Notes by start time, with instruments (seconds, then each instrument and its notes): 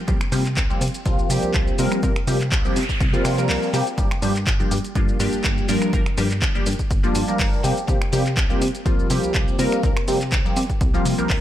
0.07 analog synth bass C2, analog polysynth F3 G3 A#3 C4 G4, kick, closed hi-hat, shaker
0.21 finger snap, shaker
0.32 analog synth bass C3, analog polysynth F3 G3 A#3 C4 G4, open hi-hat, shaker
0.46 clap, closed hi-hat, shaker
0.57 analog synth bass C2, kick, clap, closed hi-hat, shaker
0.70 analog polysynth F3 G3 A#3 C4 G4, shaker
0.81 analog synth bass C3, open hi-hat, shaker
0.88 closed hi-hat
0.94 closed hi-hat, shaker
1.06 analog synth bass C2, analog polysynth F3 G3 A#3 C4 F4, kick, closed hi-hat, shaker
1.19 shaker
1.30 analog synth bass C3, analog polysynth F3 G3 A#3 C4 G4, open hi-hat, shaker
1.43 analog synth bass C2, closed hi-hat, shaker
1.54 analog synth bass C2, kick, clap, closed hi-hat, shaker
1.67 shaker
1.78 analog synth bass C3, analog polysynth F3 G3 A#3 C4 A#4, open hi-hat, shaker
1.92 finger snap, closed hi-hat, shaker
2.03 analog synth bass C2, analog polysynth F3 G3 A#3 C4 A#4, kick, closed hi-hat, noise sweep, shaker
2.16 finger snap, shaker
2.27 analog synth bass C3, analog polysynth F3 G3 A#3 C4 G4, open hi-hat, shaker
2.41 clap, closed hi-hat, shaker
2.52 analog synth bass C2, kick, clap, closed hi-hat, shaker
2.64 analog polysynth F3 G3 A#3 C4 G4, shaker
2.76 analog synth bass C3, open hi-hat, shaker
2.83 closed hi-hat
2.89 kick, closed hi-hat, shaker
3.00 analog synth bass C2, kick, closed hi-hat, shaker
3.13 analog polysynth F3 G3 A#3 C4 F4, shaker
3.25 analog synth bass C3, finger snap, open hi-hat, shaker
3.38 analog polysynth F3 G3 A#3 C4 A#4, closed hi-hat, shaker
3.49 analog synth bass C2, clap, open hi-hat, shaker
3.63 shaker
3.73 analog synth bass C3, analog polysynth F3 G3 A#3 C4 G4, open hi-hat, shaker
3.87 closed hi-hat, shaker
3.97 analog synth bass G1, analog polysynth F3 G3 A#3 D4 G4, kick, closed hi-hat, shaker
4.11 finger snap, shaker
4.22 analog synth bass G2, analog polysynth F3 G3 A#3 D4 G4, open hi-hat, shaker
4.36 clap, closed hi-hat, shaker
4.47 analog synth bass G1, kick, clap, closed hi-hat, shaker
4.59 analog polysynth F3 G3 A#3 D4 G4, shaker
4.71 analog synth bass G2, open hi-hat, shaker
4.78 closed hi-hat
4.84 closed hi-hat, shaker
4.95 analog synth bass G1, analog polysynth F3 G3 A#3 D4 F4, kick, closed hi-hat, shaker
5.09 shaker
5.20 analog synth bass G2, analog polysynth F3 G3 A#3 D4 G4, open hi-hat, shaker
5.33 analog synth bass G1, closed hi-hat, shaker
5.44 analog synth bass G1, kick, clap, closed hi-hat, shaker
5.58 shaker
5.68 analog synth bass G2, analog polysynth F3 G3 A#3 D4 A#4, open hi-hat, shaker
5.82 finger snap, closed hi-hat, shaker
5.93 analog synth bass G1, analog polysynth F3 G3 A#3 D4 A#4, kick, closed hi-hat, shaker
6.06 finger snap, shaker
6.17 analog synth bass G2, analog polysynth F3 G3 A#3 D4 G4, open hi-hat, shaker
6.31 clap, closed hi-hat, shaker
6.42 analog synth bass G1, kick, clap, closed hi-hat, shaker
6.55 analog polysynth F3 G3 A#3 D4 G4, shaker
6.66 analog synth bass G2, open hi-hat, shaker
6.73 closed hi-hat
6.79 kick, closed hi-hat, shaker
6.91 analog synth bass G1, kick, closed hi-hat, shaker
7.03 analog polysynth F3 G3 A#3 D4 F4, shaker
7.15 analog synth bass G2, open hi-hat, shaker
7.28 analog synth bass G1, analog polysynth F3 G3 A#3 D4 A#4, closed hi-hat, shaker
7.39 analog synth bass G1, kick, clap, open hi-hat, shaker
7.53 shaker
7.63 analog synth bass C3, analog polysynth F3 G3 A#3 C4 G4, open hi-hat, shaker
7.77 closed hi-hat, shaker
7.87 analog synth bass C2, analog polysynth F3 G3 A#3 C4 G4, kick, closed hi-hat, shaker
8.02 finger snap, shaker
8.12 analog synth bass C3, analog polysynth F3 G3 A#3 C4 G4, open hi-hat, shaker
8.26 clap, closed hi-hat, shaker
8.37 analog synth bass C2, kick, clap, closed hi-hat, shaker
8.49 analog polysynth F3 G3 A#3 C4 G4, shaker
8.61 analog synth bass C3, open hi-hat, shaker
8.68 closed hi-hat
8.75 closed hi-hat, shaker
8.85 analog synth bass C2, analog polysynth F3 G3 A#3 C4 F4, kick, closed hi-hat, shaker
8.99 shaker
9.10 analog synth bass C3, analog polysynth F3 G3 A#3 C4 G4, open hi-hat, shaker
9.23 analog synth bass C2, closed hi-hat, shaker
9.34 analog synth bass C2, kick, clap, closed hi-hat, shaker
9.48 shaker
9.59 analog synth bass C3, analog polysynth F3 G3 A#3 C4 A#4, open hi-hat, shaker
9.72 finger snap, closed hi-hat, shaker
9.83 analog synth bass C2, analog polysynth F3 G3 A#3 C4 A#4, kick, closed hi-hat, shaker
9.97 finger snap, shaker
10.08 analog synth bass C3, analog polysynth F3 G3 A#3 C4 G4, open hi-hat, shaker
10.21 clap, closed hi-hat, shaker
10.32 analog synth bass C2, kick, clap, closed hi-hat, shaker
10.45 analog polysynth F3 G3 A#3 C4 G4, shaker
10.56 analog synth bass C3, open hi-hat, shaker
10.63 closed hi-hat
10.70 kick, closed hi-hat, shaker
10.81 analog synth bass C2, kick, closed hi-hat, shaker
10.94 analog polysynth F3 G3 A#3 C4 F4, shaker
11.05 analog synth bass C3, open hi-hat, shaker
11.18 analog synth bass C2, analog polysynth F3 G3 A#3 C4 A#4, closed hi-hat, shaker
11.30 analog synth bass C2, kick, clap, open hi-hat, shaker